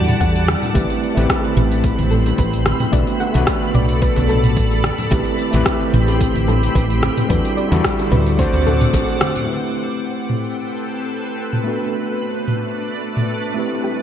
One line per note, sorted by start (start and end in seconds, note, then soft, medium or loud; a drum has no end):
0.00 0.13 E2 medium
0.00 0.77 G3 medium
0.00 2.89 G3 medium
0.00 0.77 D4 medium
0.00 0.75 E4 medium
0.00 0.18 F#4 loud
0.00 0.77 F#4 medium
0.00 0.77 A4 medium
0.00 0.73 D5 medium
0.00 0.73 F#5 medium
0.00 0.73 A5 medium
0.08 mid tom medium
0.08 open hi-hat soft
0.08 shaker soft
0.20 0.54 E2 medium
0.20 0.45 F#5 medium
0.20 kick medium
0.20 open hi-hat soft
0.20 high bongo medium
0.20 shaker soft
0.36 open hi-hat soft
0.48 cross-stick medium
0.48 high conga loud
0.48 shaker medium
0.62 open hi-hat soft
0.62 low conga medium
0.62 shaker soft
0.74 0.84 A1 loud
0.74 1.13 A3 medium
0.74 1.13 C4 medium
0.74 2.91 C4 medium
0.74 1.13 E4 medium
0.74 1.00 G4 medium
0.74 1.14 G4 medium
0.74 1.14 B4 medium
0.74 7.26 B5 medium
0.74 kick loud
0.74 open hi-hat medium
0.74 shaker soft
0.90 open hi-hat soft
0.90 high bongo soft
1.03 shaker medium
1.15 1.25 A1 loud
1.15 2.89 A3 medium
1.15 2.90 C4 medium
1.15 2.90 E4 medium
1.15 2.91 G4 medium
1.15 open hi-hat soft
1.15 high conga medium
1.15 shaker soft
1.19 2.92 B4 medium
1.30 kick loud
1.30 cross-stick medium
1.30 open hi-hat medium
1.30 high bongo medium
1.30 shaker soft
1.44 shaker soft
1.57 1.90 A1 medium
1.57 mid tom medium
1.57 shaker medium
1.72 open hi-hat soft
1.72 shaker soft
1.84 kick loud
1.84 open hi-hat medium
1.84 high bongo soft
1.84 shaker soft
1.98 2.31 A1 medium
1.98 open hi-hat soft
1.98 high conga medium
2.11 2.36 A4 medium
2.11 low conga medium
2.11 shaker medium
2.26 open hi-hat soft
2.26 high bongo medium
2.26 shaker soft
2.38 2.72 A1 medium
2.38 2.63 B4 medium
2.38 kick loud
2.38 open hi-hat medium
2.38 shaker soft
2.53 open hi-hat soft
2.66 cross-stick medium
2.66 high conga medium
2.66 shaker medium
2.80 mid tom medium
2.80 open hi-hat soft
2.80 high bongo soft
2.80 low conga medium
2.80 shaker soft
2.92 3.02 B1 loud
2.92 3.31 A3 medium
2.92 3.31 B3 medium
2.92 3.31 D4 medium
2.92 3.32 F#4 medium
2.92 4.82 A4 medium
2.92 3.32 B4 medium
2.92 4.82 D5 medium
2.92 3.18 D5 medium
2.92 kick loud
2.92 open hi-hat medium
2.92 shaker soft
3.07 open hi-hat soft
3.20 3.45 F#5 medium
3.20 high bongo medium
3.20 shaker medium
3.32 3.43 B1 loud
3.32 4.81 A3 medium
3.32 4.82 B3 medium
3.32 4.83 D4 medium
3.32 4.83 F#4 medium
3.32 open hi-hat soft
3.32 high conga medium
3.32 shaker soft
3.37 4.84 B4 medium
3.47 kick loud
3.47 cross-stick medium
3.47 open hi-hat medium
3.47 shaker soft
3.62 shaker soft
3.74 4.08 B1 loud
3.74 4.00 D5 medium
3.74 mid tom medium
3.74 high bongo medium
3.74 shaker medium
3.89 open hi-hat soft
3.89 shaker soft
4.02 4.18 B4 medium
4.02 kick loud
4.02 open hi-hat medium
4.02 shaker soft
4.16 4.57 B1 medium
4.16 open hi-hat soft
4.16 high bongo medium
4.16 high conga medium
4.29 4.54 A4 loud
4.29 low conga medium
4.29 shaker medium
4.44 mid tom medium
4.44 open hi-hat soft
4.44 shaker soft
4.57 4.90 A1 medium
4.57 kick medium
4.57 open hi-hat medium
4.57 shaker soft
4.71 open hi-hat soft
4.71 high bongo soft
4.83 7.28 C4 medium
4.83 7.28 G4 medium
4.83 cross-stick medium
4.83 high conga medium
4.83 shaker medium
4.98 open hi-hat soft
4.98 low conga medium
4.98 shaker soft
5.10 5.21 A1 loud
5.10 5.49 A3 medium
5.10 5.50 C4 medium
5.10 5.50 E4 medium
5.10 5.36 G4 medium
5.10 5.50 G4 medium
5.10 5.51 B4 medium
5.10 kick loud
5.10 open hi-hat medium
5.10 high bongo medium
5.10 shaker soft
5.25 open hi-hat soft
5.38 shaker medium
5.51 5.61 A1 medium
5.51 7.26 A3 medium
5.51 7.26 C4 medium
5.51 7.27 E4 medium
5.51 7.28 G4 medium
5.51 open hi-hat soft
5.51 high conga medium
5.51 shaker soft
5.56 7.28 B4 medium
5.65 kick medium
5.65 cross-stick medium
5.65 open hi-hat medium
5.65 high bongo medium
5.65 shaker soft
5.80 shaker soft
5.93 6.27 A1 medium
5.93 mid tom medium
5.93 shaker medium
6.08 open hi-hat soft
6.08 high bongo medium
6.08 shaker soft
6.21 kick loud
6.21 open hi-hat medium
6.21 shaker soft
6.34 6.68 A1 medium
6.34 open hi-hat soft
6.34 high conga medium
6.48 6.73 A4 medium
6.48 low conga medium
6.48 shaker medium
6.63 open hi-hat soft
6.63 high bongo medium
6.63 shaker soft
6.75 7.08 A1 medium
6.75 7.00 B4 medium
6.75 kick medium
6.75 open hi-hat medium
6.75 shaker soft
6.90 open hi-hat soft
7.02 cross-stick medium
7.02 high bongo medium
7.02 high conga medium
7.02 shaker medium
7.17 mid tom medium
7.17 open hi-hat soft
7.17 low conga medium
7.17 shaker soft
7.28 7.39 E2 loud
7.28 7.67 G3 medium
7.28 7.68 D4 medium
7.28 7.68 E4 medium
7.28 7.68 F#4 medium
7.28 8.38 A4 medium
7.28 7.69 A4 medium
7.28 7.55 B4 medium
7.28 9.46 F#5 medium
7.28 9.46 D6 medium
7.28 kick loud
7.28 open hi-hat medium
7.28 shaker soft
7.45 open hi-hat soft
7.57 7.82 D5 medium
7.57 high bongo soft
7.57 shaker medium
7.69 7.80 E2 loud
7.69 8.36 G3 medium
7.69 8.37 D4 medium
7.69 8.37 E4 medium
7.69 8.38 F#4 medium
7.69 open hi-hat soft
7.69 high conga medium
7.69 shaker soft
7.74 8.38 A4 loud
7.84 kick loud
7.84 cross-stick medium
7.84 open hi-hat medium
7.84 shaker soft
7.99 open hi-hat soft
7.99 high bongo medium
7.99 shaker soft
8.12 8.45 D2 loud
8.12 8.36 B4 medium
8.12 mid tom medium
8.12 shaker medium
8.26 open hi-hat soft
8.26 shaker soft
8.37 9.20 A3 medium
8.37 9.20 C4 medium
8.37 9.21 D4 medium
8.37 9.22 F#4 medium
8.37 8.55 C5 medium
8.37 9.47 C5 medium
8.37 kick loud
8.37 open hi-hat medium
8.37 shaker soft
8.42 9.22 C5 loud
8.53 8.86 D2 medium
8.53 open hi-hat soft
8.53 high bongo medium
8.53 high conga medium
8.53 shaker soft
8.66 8.91 A4 loud
8.66 low conga medium
8.66 shaker medium
8.81 mid tom medium
8.81 open hi-hat soft
8.81 shaker soft
8.93 9.03 A1 medium
8.93 kick medium
8.93 open hi-hat medium
8.93 high bongo medium
8.93 shaker soft
9.08 open hi-hat soft
9.21 cross-stick medium
9.21 high conga loud
9.21 shaker medium
9.36 open hi-hat soft
9.36 low conga medium
9.36 shaker soft
9.45 11.62 A3 medium
9.45 11.62 C4 medium
9.45 11.64 C4 medium
9.45 11.63 E4 medium
9.45 11.64 G4 medium
9.45 11.64 A4 medium
9.45 14.02 B4 medium
9.45 11.64 G5 medium
9.50 11.64 B4 medium
10.30 mid tom medium
11.53 mid tom medium
11.64 13.53 A3 medium
11.64 13.55 A3 medium
11.64 13.53 B3 medium
11.64 13.55 D4 medium
11.64 13.54 D4 medium
11.64 13.54 F#4 medium
11.68 13.55 B4 medium
12.48 mid tom medium
13.17 mid tom medium
13.54 14.02 G3 medium
13.54 14.02 A3 medium
13.54 14.02 C4 medium
13.54 14.02 E4 medium
13.54 14.02 G4 medium
13.54 14.02 A4 medium
13.59 14.02 B4 medium
13.84 14.02 G4 medium